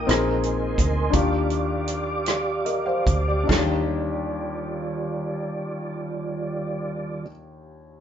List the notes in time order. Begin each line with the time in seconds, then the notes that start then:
Already playing: A#2 A#3 D#4 G4 A#4 D#5
0.07 A#1 A#2 C4 D#4 G#4 A#4 G#5 C6, closed hi-hat
0.11 cross-stick
0.43 closed hi-hat
0.78 D2, kick, closed hi-hat
1.10 D#2 D#3 D4 D#4 F4 D5 F5, kick, closed hi-hat
1.14 G4 D6
1.50 closed hi-hat
1.88 closed hi-hat
2.26 cross-stick, closed hi-hat
2.65 A#4 D#5, closed hi-hat
2.86 C5 F5
3.07 D2, kick, closed hi-hat
3.28 G4 D5
3.43 D4 D#4
3.49 D#2 D#3 G3 F4 D5, kick, snare, china
3.55 G4